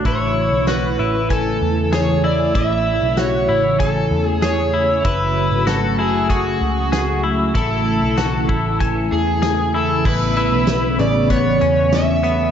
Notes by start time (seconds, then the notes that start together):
Already playing: A3
0.05 A1 C#3 E3 E4 C#5, kick, closed hi-hat
0.52 B1
0.67 F#4 B4, snare, closed hi-hat, tambourine
0.99 A1 E4
1.30 A4 G#5, kick, closed hi-hat
1.62 E2
1.93 G#4 C#5, snare, closed hi-hat, tambourine
2.24 E4 D5
2.55 A1 E4 E5, kick, closed hi-hat
3.02 B1
3.17 F#4 C#5, snare, closed hi-hat, tambourine
3.49 A1 E4
3.80 A4 G#5, kick, closed hi-hat
4.11 E2
4.26 G#4
4.42 G#4 C#5, snare, closed hi-hat, tambourine
4.74 E4
5.04 F#1 F#3 A3 E4 F#4 B4, kick, closed hi-hat
5.51 G#1
5.67 F#4 A4, snare, closed hi-hat, tambourine
5.99 F#1 E4 G#4
6.29 F#4 G#4, kick, closed hi-hat
6.61 C#2
6.92 G#4, snare, closed hi-hat, tambourine
7.24 E4
7.55 A1 E3 E4 A4, kick, closed hi-hat
8.02 B1
8.17 F#4, snare, closed hi-hat, tambourine
8.49 A1 E4, kick
8.80 G#5, kick, closed hi-hat
9.12 E2 G#4
9.42 G#4, snare, closed hi-hat, tambourine
9.74 E4 A4
10.05 A1 C#3 E3 A3 B3 E4 B4, kick, crash
10.36 E4, closed hi-hat
10.52 B1
10.67 snare, closed hi-hat, tambourine
10.99 A1 C#3 D5, closed hi-hat
11.30 B3 C#5, kick, closed hi-hat
11.61 E2 C#4, closed hi-hat
11.93 E5, snare, closed hi-hat, tambourine
12.23 B3, closed hi-hat